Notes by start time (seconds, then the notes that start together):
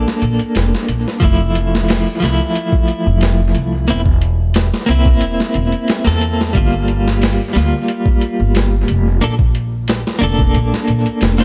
Already playing: A#3 D4 A4
0.08 snare
0.22 A#1, closed hi-hat
0.39 closed hi-hat
0.55 F1, snare, closed hi-hat
0.75 snare
0.89 A#1, closed hi-hat
1.08 snare
1.20 F1 F3 A3, kick, closed hi-hat
1.24 E4
1.55 closed hi-hat
1.75 snare
1.88 snare, open hi-hat
2.20 C2 F3 A3, snare, closed hi-hat
2.25 E4
2.55 closed hi-hat
2.73 kick
2.88 closed hi-hat
3.07 F1
3.21 snare, closed hi-hat
3.55 C2, closed hi-hat
3.88 E1 A#3 C4 E4, closed hi-hat
4.06 kick
4.22 closed hi-hat
4.54 snare, closed hi-hat
4.74 snare
4.86 C2 A#3 C4, closed hi-hat
4.91 E4
5.05 kick
5.21 E1, closed hi-hat
5.40 snare
5.54 E1, closed hi-hat
5.72 closed hi-hat
5.88 snare, closed hi-hat
6.05 E2 A#3 C4 A4, snare
6.21 closed hi-hat
6.41 snare
6.53 G1 G3 A#3, kick, closed hi-hat
6.57 F4
6.88 closed hi-hat
7.08 snare
7.22 snare, open hi-hat
7.53 D2 G3 A#3, snare, closed hi-hat
7.58 F4
7.88 closed hi-hat
8.06 kick
8.21 closed hi-hat
8.40 G1
8.55 snare, closed hi-hat
8.88 F1, closed hi-hat
9.21 A#1 A#3 D4 A4, closed hi-hat
9.39 kick
9.55 closed hi-hat
9.88 snare, closed hi-hat
10.07 snare
10.19 F1 A#3 D4, closed hi-hat
10.24 A4
10.39 kick
10.55 A#1, closed hi-hat
10.74 snare
10.88 A#1, closed hi-hat
11.06 closed hi-hat
11.21 F1, snare, closed hi-hat
11.38 A#3 D4 C5, snare